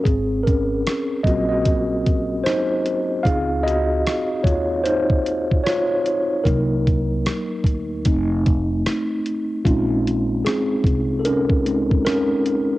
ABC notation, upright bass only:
X:1
M:4/4
L:1/8
Q:"Swing 16ths" 1/4=75
K:Bbm
V:1 name="Upright bass" clef=bass
A,,,2 z B,,,3 z2 | D,,2 z E,,3 z2 | C,,2 z =D,, F,,,2 z2 | B,,,2 z C,,3 z2 |]